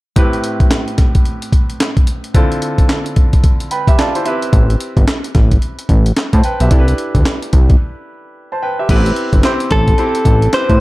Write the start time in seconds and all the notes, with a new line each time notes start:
0.16 A2 C4 E4 G4 B4, kick, closed hi-hat
0.33 closed hi-hat
0.44 closed hi-hat
0.60 kick, closed hi-hat
0.71 snare, clap, closed hi-hat
0.88 closed hi-hat
0.98 kick, snare, closed hi-hat
1.15 kick, closed hi-hat
1.25 closed hi-hat
1.42 closed hi-hat
1.53 kick, closed hi-hat
1.70 closed hi-hat
1.80 snare, clap, closed hi-hat
1.97 kick, closed hi-hat
2.07 closed hi-hat
2.24 closed hi-hat
2.34 D3 C4 E4 F4 A4, kick, closed hi-hat
2.52 closed hi-hat
2.62 closed hi-hat
2.78 kick, closed hi-hat
2.89 snare, clap, closed hi-hat
3.06 closed hi-hat
3.16 kick, closed hi-hat
3.33 kick, closed hi-hat
3.44 kick, closed hi-hat
3.60 closed hi-hat
3.71 B4 G5 B5, closed hi-hat
3.88 G4 E5, kick, closed hi-hat
3.98 F4 D5 A5, snare, clap, closed hi-hat
4.15 E4 C5, closed hi-hat
4.25 C4 E4 G4 B4 E5, closed hi-hat
4.42 closed hi-hat
4.53 A1, kick, closed hi-hat
4.70 closed hi-hat
4.80 closed hi-hat
4.97 G1, kick, closed hi-hat
5.08 snare, clap, closed hi-hat
5.24 closed hi-hat
5.35 A1, kick, snare, closed hi-hat
5.51 kick, closed hi-hat
5.62 closed hi-hat
5.79 closed hi-hat
5.89 A1, kick, closed hi-hat
6.06 closed hi-hat
6.16 snare, clap, closed hi-hat
6.33 A2 C5 A5, kick, closed hi-hat
6.44 B4 G5, closed hi-hat
6.60 B1 G4 E5, closed hi-hat
6.71 C2 D4 E4 G4 A4, kick, closed hi-hat
6.79 B4
6.88 closed hi-hat
6.98 closed hi-hat
7.15 D2, kick, closed hi-hat
7.25 snare, clap, closed hi-hat
7.42 closed hi-hat
7.53 C2, kick, closed hi-hat
7.70 kick, closed hi-hat
8.52 C5 A5
8.62 B4 G5
8.79 G4 E5
8.89 A1 B3 E4 G4 B4, kick, closed hi-hat, crash
8.96 C4
9.06 closed hi-hat
9.16 closed hi-hat
9.33 G1, kick, closed hi-hat
9.43 C4 E4 G4 C5, snare, clap, closed hi-hat
9.60 closed hi-hat
9.71 A1 A4, kick, snare, closed hi-hat
9.88 kick, closed hi-hat
9.98 C4 E4 G4 C5, closed hi-hat
10.15 closed hi-hat
10.25 A1, kick, closed hi-hat
10.42 closed hi-hat
10.53 C4 E4 G4 B4 C5, snare, clap, closed hi-hat
10.69 A2, kick, closed hi-hat